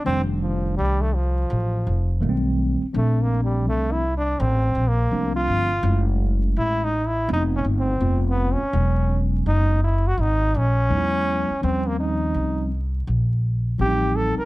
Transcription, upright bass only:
X:1
M:4/4
L:1/16
Q:"Swing 16ths" 1/4=83
K:F
V:1 name="Upright bass" clef=bass
F,,,4 C,,4 A,,,2 F,,,2 =B,,,3 z | B,,,4 C,,4 A,,,2 B,,,2 C,,2 G,,,2 | ^F,,,4 A,,,4 =F,,,2 G,,,2 F,,,3 z | E,,,4 ^F,,,4 ^G,,,2 B,,,2 E,,3 z |
_E,,4 C,,4 B,,,4 A,,,3 z |]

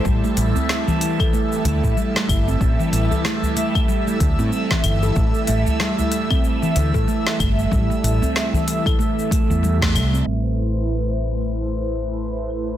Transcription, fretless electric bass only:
X:1
M:4/4
L:1/16
Q:"Swing 16ths" 1/4=94
K:Am
V:1 name="Fretless electric bass" clef=bass
A,,, z A,,, z6 z D,, A,, z2 G,,,2 | A,,, z A,,, z6 z D,, A,, z2 G,,,2 | A,,, z A,,, z6 z D,, A,, z2 G,,,2 | A,,, z A,,, z8 E,,3 C,,2 |
A,,,16 |]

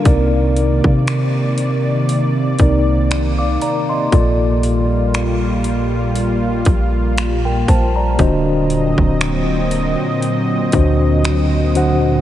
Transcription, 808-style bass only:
X:1
M:4/4
L:1/16
Q:"Swing 16ths" 1/4=59
K:Gm
V:1 name="808-style bass" clef=bass
C,,3 C,6- C, C,,4 z2 | B,,,8- B,,,2 B,,,4 B,,,2 | D,,,3 D,,,4 z3 D,,6 |]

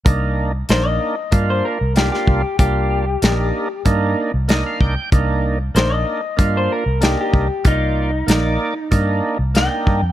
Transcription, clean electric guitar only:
X:1
M:4/4
L:1/16
Q:1/4=95
K:Cm
V:1 name="Clean electric guitar"
z4 c e4 c B2 G G3 | G8 z8 | z4 c e4 c B2 G G3 | E8 z4 g4 |]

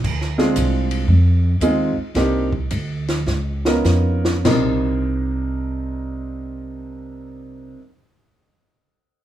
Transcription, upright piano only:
X:1
M:4/4
L:1/8
Q:"Swing" 1/4=99
K:Cm
V:1 name="Upright piano"
z [A,CDFA]3 z2 [A,CEFA] z | [B,CDEG] z4 [_C_DEFB]3 | [C,CDEB]8- | [C,CDEB]8 |]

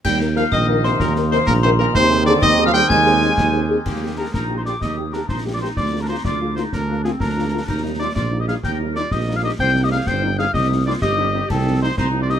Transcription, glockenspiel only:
X:1
M:6/8
L:1/16
Q:3/8=126
K:Eb
V:1 name="Glockenspiel"
g'4 f'2 e'4 c'2 | b4 c'2 b2 c'2 b2 | c'4 d'2 e'3 f' g'2 | a'8- a'2 z2 |
z12 | z12 | z12 | z12 |
z12 | z12 | z12 | z12 |
z12 |]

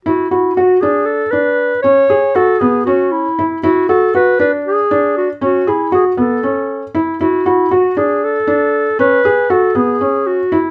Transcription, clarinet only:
X:1
M:7/8
L:1/16
Q:1/4=118
K:Bdor
V:1 name="Clarinet"
F2 E2 F2 G2 A2 B4 | c4 A2 G2 F2 E3 z | F2 A2 B2 B2 G4 F2 | F2 E2 G2 A6 z2 |
F2 E2 F2 G2 A6 | B4 A2 G4 F3 z |]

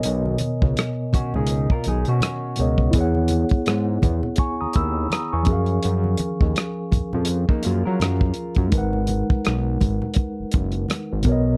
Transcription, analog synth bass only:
X:1
M:4/4
L:1/16
Q:"Swing 16ths" 1/4=83
K:G#dor
V:1 name="Analog synth bass" clef=bass
B,,,2 z C,, z2 C,, C,,2 z B,,, B,, z2 C,,2 | =E,,3 G,, G,,2 E,, z2 D,, D,,2 z E,, F,,2 | F,,2 z D,, z2 E,, E,,2 z F,, F, F,,2 z F,, | G,,,3 B,,, B,,,2 G,,, z2 F,,, F,,,2 z G,,, B,,,2 |]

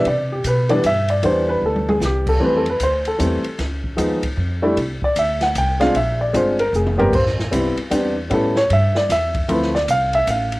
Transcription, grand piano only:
X:1
M:3/4
L:1/8
Q:"Swing" 1/4=153
K:C
V:1 name="Grand piano"
d G B d e d | c B A _A G =A | (3B A B c A3 | z6 |
z d e ^f g =f | e d c _B _A B | c z4 z | A ^c e d e2 |
B d f e f2 |]
V:2 name="Grand piano"
z3 [E,G,B,D] z2 | [E,G,B,D]4- [E,G,B,D] z | [E,G,A,C] z3 [E,G,A,C] z | z2 [F,_A,_C_E] z2 [G,=A,D=E] |
z4 z [_A,CDF] | z2 [_A,CDF] z2 [G,B,CG] | z2 [G,B,CE] z [G,B,CD] z | [G,B,^CE] z4 z |
[F,A,CE] z4 z |]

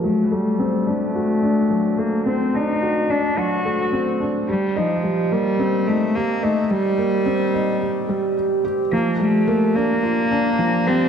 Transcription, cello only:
X:1
M:4/4
L:1/8
Q:1/4=108
K:Eblyd
V:1 name="Cello"
A, G,2 A,4 B, | C E2 D ^F3 z | G, F,2 G,2 A, B, A, | G,6 z2 |
B, A,2 B,4 C |]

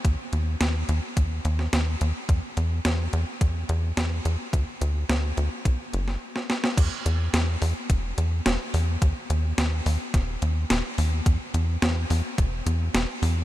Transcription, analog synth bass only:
X:1
M:4/4
L:1/8
Q:1/4=107
K:Bmix
V:1 name="Analog synth bass" clef=bass
D,, D,, D,, D,, D,, D,, D,, D,, | E,, E,, E,, E,, E,, E,, E,, E,, | =D,, D,, D,, D,, B,,, F,,, z2 | E,, E,, E,, E,, E,,, E,, E,,, E,, |
D,, D,, D,, D,, D,,, D,, D,,, D,, | E,, E,, E,, E,, E,,, E,, E,,, E,, |]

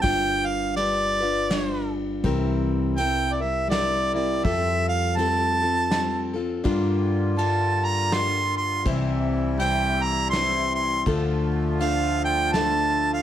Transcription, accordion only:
X:1
M:3/4
L:1/8
Q:"Swing" 1/4=82
K:Gdor
V:1 name="Accordion" clef=bass
z6 | z6 | z6 | [D,G,B,F]6 |
[C,E,E]6 | [D,F,A,F]6 |]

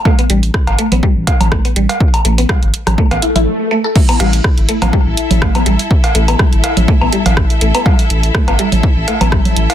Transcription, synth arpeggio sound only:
X:1
M:4/4
L:1/16
Q:"Swing 16ths" 1/4=123
K:C
V:1 name="Synth arpeggio sound"
A, B, G, z3 A, B, G, z3 A, B, G, z | z2 A, B, G, z3 A, B, E E z2 A, A | A, B, G, z3 A, B, G, z3 A, B, G, z | z2 A, B, G, z3 A, B, G, z3 A, B, |
G, z3 A, B, G, z3 A, B, G, z3 |]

